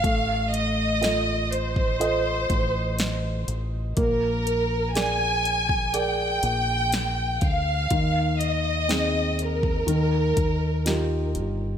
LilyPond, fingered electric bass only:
\new Staff \with { instrumentName = "Fingered electric bass" } { \clef bass \time 4/4 \key bes \dorian \tempo 4 = 61 a,,2~ a,,8 a,,4 a,,8 | bes,,2~ bes,,8 bes,,4 d,8 | ees,2 ees,8 ees,4 g,,8 | }